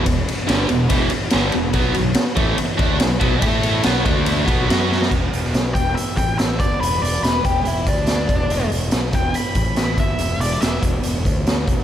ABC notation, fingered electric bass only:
X:1
M:4/4
L:1/8
Q:1/4=142
K:Bmix
V:1 name="Fingered electric bass" clef=bass
E,,, z =G,,, E,,, E,,, z G,,, E,,, | B,,, B,,, z A,,, z =D,, B,,, B,,, | A,,2 B,,, =D,,2 B,,, F,,2 | [K:A] E,,, E,,, B,,, E,,, z A,,,2 =G,,, |
E,,, E,,, E,,, E,,, E,,, D,,2 E,,, | E,,, E,,, B,,, E,,, z A,,,2 =G,,, | E,,, E,,, E,,, E,,, E,,, D,,2 E,,, |]